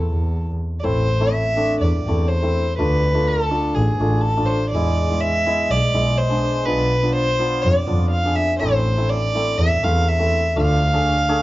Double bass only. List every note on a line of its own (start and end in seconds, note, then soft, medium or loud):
0.11 0.55 E2 medium
0.85 1.43 A1 medium
1.81 1.96 E2 loud
2.06 2.50 E2 medium
2.79 3.37 D2 medium
3.77 3.91 A1 loud
3.99 4.43 A1 loud
4.71 5.30 E2 medium
5.70 5.85 B1 loud
5.94 6.38 B1 medium
6.67 7.25 B1 medium
7.65 7.80 F2 loud
7.89 8.33 F2 medium
8.62 9.20 A1 medium
9.59 9.74 E2 loud
9.83 10.27 E2 loud
10.56 11.15 D2 loud